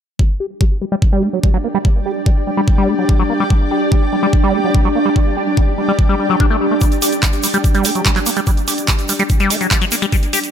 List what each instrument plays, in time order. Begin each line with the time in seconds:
0.19 acid bass G3, synth texture G3 D4, ambient pad G4, kick
0.37 acid bass G4, ambient pad D5 G5
0.61 acid bass G3, kick
0.81 acid bass G3
0.92 acid bass G3
1.02 kick
1.12 acid bass G3
1.23 acid bass A3
1.33 acid bass F#3
1.44 acid bass G3, kick
1.54 acid bass F#3
1.64 acid bass A#3
1.75 acid bass G3
1.85 acid bass G3, kick
2.06 acid bass G4
2.26 acid bass G3, kick
2.47 acid bass G3
2.57 acid bass G3
2.68 kick
2.78 acid bass G3
2.88 acid bass A3
2.99 acid bass F#3
3.09 acid bass G3, kick
3.19 acid bass F#3
3.30 acid bass A#3
3.40 acid bass G3
3.50 acid bass G3, kick
3.71 acid bass G4
3.92 acid bass G3, kick
4.13 acid bass G3
4.23 acid bass G3
4.33 kick
4.44 acid bass G3
4.54 acid bass A3
4.64 acid bass F#3
4.75 acid bass G3, kick
4.85 acid bass F#3
4.95 acid bass A#3
5.06 acid bass G3
5.16 acid bass G3, kick
5.37 acid bass G4
5.57 acid bass G3, kick
5.78 acid bass G3
5.88 acid bass G3
5.99 kick
6.09 acid bass G3
6.19 acid bass G3
6.30 acid bass F#3
6.40 acid bass D4, kick
6.50 acid bass A3
6.61 acid bass G3
6.71 acid bass A3
6.81 acid bass G3, kick, closed hi-hat, shaker
6.92 closed hi-hat, shaker
7.02 acid bass G4, open hi-hat, shaker
7.12 closed hi-hat, shaker
7.23 acid bass G3, kick, clap, closed hi-hat, shaker
7.33 closed hi-hat, shaker
7.43 acid bass G3, open hi-hat, shaker
7.54 acid bass G3, closed hi-hat, shaker
7.64 kick, closed hi-hat, shaker
7.74 acid bass G3, closed hi-hat, shaker
7.84 acid bass A3, open hi-hat, shaker
7.95 acid bass F#3, closed hi-hat, shaker
8.05 acid bass G3, kick, clap, closed hi-hat, shaker
8.16 acid bass F#3, clap, closed hi-hat, shaker
8.26 acid bass A#3, open hi-hat, shaker
8.37 acid bass G3, closed hi-hat, shaker
8.47 acid bass G3, kick, closed hi-hat, shaker
8.57 closed hi-hat, shaker
8.68 acid bass G4, open hi-hat, shaker
8.78 closed hi-hat, shaker
8.88 acid bass G3, kick, clap, closed hi-hat, shaker
8.99 closed hi-hat, shaker
9.09 acid bass G3, open hi-hat, shaker
9.19 acid bass G3, closed hi-hat, shaker
9.29 kick, closed hi-hat, shaker
9.40 acid bass G3, closed hi-hat, shaker
9.50 acid bass A3, open hi-hat, shaker
9.61 acid bass F#3, closed hi-hat, shaker
9.71 acid bass G3, kick, clap, closed hi-hat, shaker
9.81 acid bass F#3, closed hi-hat, shaker
9.92 acid bass A#3, open hi-hat, shaker
10.02 acid bass G3, closed hi-hat, shaker
10.12 acid bass G3, kick, closed hi-hat, shaker
10.23 closed hi-hat
10.33 acid bass G4, open hi-hat, shaker
10.43 closed hi-hat, shaker